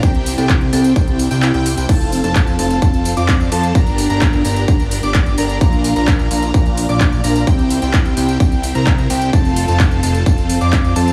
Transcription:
<<
  \new Staff \with { instrumentName = "Digital synth lead" } { \time 4/4 \key f \major \tempo 4 = 129 g''8. g''8. g''8 g''8. g''8 g''8 g''16 | a''8. a''8. a''8 a''8. d'''8. a''8 | bes''8. bes''8. bes''8 bes''8. d'''8. bes''8 | bes''8. bes''8. bes''8 bes''8. d'''8. bes''8 |
g''8. g''8. g''8 g''8. bes''8. g''8 | a''8. a''8. a''8 a''8. d'''8. a''8 | }
  \new Staff \with { instrumentName = "Marimba" } { \time 4/4 \key f \major r8. a'16 r8 a'16 r4 r16 e'4 | r1 | r1 | r1 |
r1 | r1 | }
  \new Staff \with { instrumentName = "Supersaw synth" } { \time 4/4 \key f \major <c' e' g'>8. <c' e' g'>8. <c' e' g'>8 <c' e' g'>8. <c' e' g'>8 <c' e' g'>8 <c' e' g'>16 | <c' f' a'>8. <c' f' a'>8. <c' f' a'>8 <c' f' a'>8. <c' f' d''>8. <c' f' a'>8 | <d' g' bes'>8. <d' g' bes'>8. <d' g' bes'>8 <d' g' bes'>8. <d' g' d''>8. <d' g' bes'>8 | <d' f' bes'>8. <d' f' bes'>8. <d' f' bes'>8 <d' f' bes'>8. <d' f' d''>8. <d' f' bes'>8 |
<c' e' g'>8. <c' e' g'>8. <c' e' g'>8 <c' e' g'>8. <c' e' bes'>8. <c' e' g'>8 | <c' f' a'>8. <c' f' a'>8. <c' f' a'>8 <c' f' a'>8. <c' f' d''>8. <c' f' a'>8 | }
  \new Staff \with { instrumentName = "Analog synth bass" } { \clef bass \time 4/4 \key f \major c,8. c,8. c,8 c,8. c,8 c,8 c,16 | f,,8. f,,8. f,,8 f,,8. f,8. f,8 | g,,8. g,,8. g,,8 g,,8. g,,8. g,,8 | bes,,8. bes,,8. bes,,8 bes,,8. bes,,8. bes,,8 |
c,8. c,8. c,8 c,8. c,8. c,8 | f,,8. f,,8. f,,8 f,,8. f,8. f,8 | }
  \new DrumStaff \with { instrumentName = "Drums" } \drummode { \time 4/4 <hh bd tamb>16 hh16 <hho tamb>16 <hh tamb>16 <hc hh bd tamb>16 hh16 <hho tamb>16 <hh tamb>16 <hh bd tamb>16 hh16 <hho tamb>16 <hh tamb>16 <hc hh tamb>16 hh16 <hho tamb>16 <hh tamb>16 | <cymc hh bd tamb>16 <hh tamb>16 <hho tamb>16 <hh tamb>16 <hc hh bd tamb>16 <hh tamb>16 <hho tamb>16 <hh tamb>16 <hh bd tamb>16 <hh tamb>16 <hho tamb>16 <hh tamb>16 <hc hh bd tamb>16 <hh tamb>16 <hho tamb>16 <hh tamb>16 | <hh bd tamb>16 <hh tamb>16 <hho tamb>16 <hh tamb>16 <hc hh bd tamb>16 <hh tamb>16 <hho tamb>16 <hh tamb>16 <hh bd tamb>16 <hh tamb>16 <hho tamb>16 <hh tamb>16 <hc hh bd tamb>16 <hh tamb>16 <hho tamb>16 <hh tamb>16 | <hh bd tamb>16 <hh tamb>16 <hho tamb>16 <hh tamb>16 <hc hh bd tamb>16 <hh tamb>16 <hho tamb>16 <hh tamb>16 <hh bd tamb>16 <hh tamb>16 <hho tamb>16 <hh tamb>16 <hc hh bd tamb>16 <hh tamb>16 <hho tamb>16 <hh tamb>16 |
<hh bd tamb>16 <hh tamb>16 <hho tamb>16 <hh tamb>16 <hc hh bd tamb>16 <hh tamb>16 <hho tamb>16 <hh tamb>16 <hh bd tamb>16 <hh tamb>16 <hho tamb>16 <hh tamb>16 <hc hh bd tamb>16 <hh tamb>16 <hho tamb>16 <hh tamb>16 | <hh bd tamb>16 <hh tamb>16 <hho tamb>16 <hh tamb>16 <hc hh bd tamb>16 <hh tamb>16 <hho tamb>16 <hh tamb>16 <hh bd tamb>16 <hh tamb>16 <hho tamb>16 <hh tamb>16 <hc hh bd tamb>16 <hh tamb>16 <hho tamb>16 <hh tamb>16 | }
>>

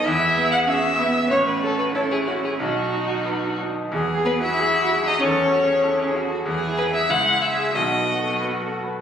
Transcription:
<<
  \new Staff \with { instrumentName = "Violin" } { \time 2/4 \key e \major \tempo 4 = 93 e''8. fis''16 e''4 | cis''16 b'16 a'16 b'16 a'16 gis'16 fis'16 gis'16 | fis'4. r8 | r8 b'16 e''4 dis''16 |
cis''4. r8 | r8 b'16 e''16 fis''8 e''8 | dis''4 r4 | }
  \new Staff \with { instrumentName = "Grand piano" } { \time 2/4 \key e \major e,8 b8 gis'8 b8 | a,,8 cis'8 cis''8 cis'8 | b,,8 dis'8 b'8 dis'8 | \tuplet 3/2 { e,8 gis'8 fis'8 gis'8 fis'8 gis'8 } |
\tuplet 3/2 { e,8 a'8 gis'8 a'8 gis'8 a'8 } | \tuplet 3/2 { e,8 e'8 <gis' e''>8 cis,8 e'8 <gis' e''>8 } | \tuplet 3/2 { b,,8 b'8 a'8 b'8 a'8 b'8 } | }
  \new Staff \with { instrumentName = "Viola" } { \time 2/4 \key e \major e''8. fis''16 e''4 | cis''16 b'16 a'16 b'16 a'16 gis'16 fis'16 gis'16 | fis'4. r8 | r8 b16 e'4 dis'16 |
cis'4. r8 | e'4 e'4 | b4. r8 | }
  \new Staff \with { instrumentName = "Cello" } { \time 2/4 \key e \major e'4 cis'8 b8 | cis'4 e'4 | dis'4. r8 | gis'4 fis'8 gis'8 |
a'8 fis'8 e'8 fis'8 | gis'4 e'4 | fis'4. r8 | }
  \new Staff \with { instrumentName = "Violin" } { \time 2/4 \key e \major gis'4 fis'8 e'8 | fis'4 cis'4 | dis'4. r8 | r8 b16 e'4 dis'16 |
cis'4. r8 | gis'4 gis'4 | fis'4. r8 | }
>>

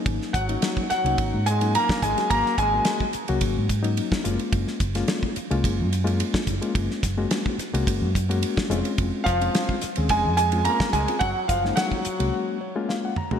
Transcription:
<<
  \new Staff \with { instrumentName = "Grand piano" } { \time 4/4 \key ges \lydian \tempo 4 = 108 r8 ges''4 ges''4 aes''8 bes''8 aes''8 | bes''8 aes''4 r2 r8 | r1 | r1 |
r8 f''4 r8 aes''8 aes''8 bes''8 aes''8 | ges''8 f''8 ges''4. r4. | }
  \new Staff \with { instrumentName = "Reed electric piano" } { \time 4/4 \key ges \lydian << { r1 | r1 | r1 | r1 |
r1 | r2 r8 des''8 f''16 ges''16 bes''8 | } \\ { <ges bes des' ees'>8 r16 <ges bes des' ees'>8. r16 <ges bes des' ees'>8. r16 <ges bes des' ees'>8. r16 <ges bes des' ges'>16~ | <ges bes des' ges'>8 r16 <ges bes des' ges'>8. r16 <ges bes des' ges'>8. r16 <ges bes des' ees'>8. <aes bes des' f'>8~ | <aes bes des' f'>8 r16 <aes bes des' f'>8. r16 <aes bes des' f'>8. r16 <aes bes des' f'>8. r16 <aes bes des' f'>16~ | <aes bes des' f'>8 r16 <aes bes des' ges'>8. r16 <aes bes des' ges'>8. r16 <aes bes des' ges'>8. <aes c' des' f'>8~ |
<aes c' des' f'>8 r16 <aes c' des' f'>8. r16 <aes c' des' aes'>8. r16 <aes c' des' f'>8. r16 <aes c' des' f'>16 | r8. <aes bes des' ees'>8. r16 <aes bes des' ges'>8. r16 <aes bes des' f'>8. r16 <aes bes des' ges'>16 | } >> }
  \new Staff \with { instrumentName = "Trombone" } { \clef bass \time 4/4 \key ges \lydian r8 ges4 ges4 aes8 bes8 aes8 | bes8 aes4 r2 r8 | r1 | r1 |
r8 f4 r8 aes8 aes8 bes8 aes8 | ges8 f8 ges4. r4. | }
  \new Staff \with { instrumentName = "Fingered electric bass" } { \clef bass \time 4/4 \key ges \lydian aes,,16 r16 aes,,8 r8. c,16 aes,,16 aes,4 r16 aes,,16 r16 | aes,,16 r16 aes,,8 r8. c,16 aes,,16 aes,4 r16 ges,,16 r16 | ges,,16 r16 ges,,8 r8. c,16 ges,,16 ges,4 r16 ges,,16 r16 | ges,,16 r16 ges,,8 r8. c,16 ges,,16 ges,4 r16 f,,16 r16 |
f,,16 r16 f,,8 r8. ees,16 f,,16 f,4 r16 des,16 r16 | ges,,16 r16 ges,,8 r8. c,16 r2 | }
  \new DrumStaff \with { instrumentName = "Drums" } \drummode { \time 4/4 <bd cymr>16 sn16 <hhp bd cymr>16 cymr16 <cymr sn>16 bd16 <hhp cymr sn>16 cymr16 <bd cymr>8 <hhp cymr>16 cymr16 cymr16 <bd sn>16 <hhp bd cymr>16 <cymr sn>16 | <bd cymr>16 sn16 <hhp bd cymr>8 <cymr sn>16 bd16 <hhp cymr>16 cymr16 <bd cymr>8 <hhp bd cymr>16 cymr16 cymr16 <bd sn>16 <hhp cymr>16 cymr16 | <bd cymr>16 sn16 <hhp bd cymr>16 <cymr sn>16 <cymr sn>16 bd16 <hhp cymr>16 cymr16 <bd cymr>8 <hhp cymr>16 cymr16 cymr16 <bd sn>16 <hhp bd cymr>16 cymr16 | <bd cymr>16 sn16 <hhp bd cymr sn>8 <cymr sn>16 bd16 <hhp cymr sn>16 cymr16 <bd cymr>8 <hhp bd cymr>16 cymr16 cymr16 <bd sn>16 <hhp cymr>16 cymr16 |
<bd cymr>8 <hhp bd cymr>16 cymr16 <cymr sn>16 bd16 <hhp cymr sn>16 cymr16 <bd cymr>8 <hhp cymr>16 cymr16 cymr16 <bd sn>16 <hhp bd cymr>16 cymr16 | <bd cymr>8 <hhp bd cymr>16 sn16 <cymr sn>16 bd16 <hhp cymr>16 cymr16 r4 sn8 toml16 tomfh16 | }
>>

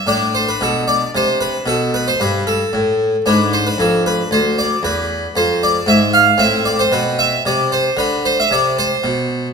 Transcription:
<<
  \new Staff \with { instrumentName = "Harpsichord" } { \time 12/8 \key a \minor \tempo 4. = 76 << { d''8 c''16 b'16 a'8 d''8 c''8 b'8 a'8 b'16 c''16 b'8 a'4. | b'8 c''16 b'16 a'8 b'8 c''8 d''8 b'4 c''8 d''8 e''8 f''8 | e''8 d''16 c''16 b'8 e''8 d''8 c''8 b'8 c''16 e''16 d''8 c''4. | } \\ { d'1. | d'1. | c'1. | } >> }
  \new Staff \with { instrumentName = "Harpsichord" } { \clef bass \time 12/8 \key a \minor a,4 b,4 c4 b,4 g,4 a,4 | gis,4 f,4 d,4 e,4 f,4 gis,4 | a,4 b,4 c4 d4 c4 b,4 | }
>>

